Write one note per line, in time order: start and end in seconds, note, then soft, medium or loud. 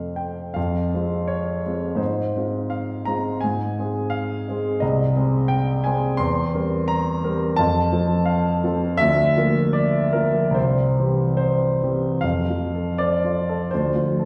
0.00 0.50 F2 soft
0.00 0.51 A3 soft
0.00 0.51 C4 soft
0.00 0.52 F4 soft
0.00 0.17 F5 medium
0.16 0.56 G5 medium
0.54 0.92 F2 soft
0.54 1.28 F5 medium
0.94 1.61 G#3 soft
0.94 1.62 C4 soft
0.94 1.62 F4 soft
1.28 1.99 C#5 medium
1.66 1.98 G#3 soft
1.66 1.98 C4 soft
1.66 1.98 F4 soft
1.95 2.32 G#2 soft
1.95 2.69 C5 medium
2.36 3.02 G#3 soft
2.36 3.03 C4 soft
2.36 3.03 F4 soft
2.70 3.06 F5 medium
3.05 3.38 G#3 soft
3.05 3.38 C4 soft
3.05 3.39 F4 soft
3.05 3.41 A#5 medium
3.41 3.76 G#2 medium
3.41 4.11 G#5 medium
3.79 4.44 G#3 soft
3.79 4.45 C4 soft
3.79 4.45 G#4 soft
4.10 4.81 F5 medium
4.48 4.79 G#3 soft
4.48 4.79 C4 soft
4.48 4.80 G#4 soft
4.80 5.15 C2 medium
4.80 5.50 D#5 medium
5.16 5.82 G#3 soft
5.16 5.82 C4 soft
5.16 5.82 G#4 soft
5.48 5.84 G5 medium
5.84 6.17 G#3 soft
5.84 6.17 C4 soft
5.84 6.18 G#4 soft
5.84 6.19 G#5 medium
6.17 6.54 E2 medium
6.17 6.88 C6 medium
6.54 7.21 G3 soft
6.54 7.21 C4 soft
6.54 7.21 A#4 soft
6.88 7.58 A#5 medium
7.24 7.56 G3 soft
7.24 7.56 C4 soft
7.24 7.56 A#4 medium
7.56 7.93 F2 medium
7.56 8.27 A5 medium
7.92 8.59 F3 soft
7.92 8.59 C4 soft
7.92 8.60 A4 soft
8.26 8.63 F5 medium
8.64 8.96 F3 soft
8.64 8.97 C4 soft
8.64 8.97 A4 medium
8.97 9.36 D2 medium
8.97 9.74 E5 loud
9.37 10.11 F3 soft
9.37 10.11 A#3 soft
9.37 10.11 A#4 soft
9.73 10.14 D5 medium
10.13 10.52 F3 soft
10.13 10.52 A#3 soft
10.13 10.55 A#4 medium
10.51 10.94 C2 medium
10.51 11.35 C5 medium
10.99 11.78 E3 soft
10.99 11.78 C4 soft
10.99 11.78 G4 soft
11.37 12.22 C5 medium
11.83 12.20 E3 soft
11.83 12.21 C4 soft
11.83 12.21 G4 soft
12.21 13.68 F2 medium
12.21 12.98 F5 medium
12.50 12.89 F3 soft
12.75 13.14 A4 soft
12.98 13.38 C5 soft
12.98 13.71 D5 medium
13.24 13.62 F4 soft
13.49 13.72 A4 soft
13.71 14.25 D2 medium
13.71 14.25 C5 medium
13.95 14.25 F3 soft
14.19 14.25 A4 soft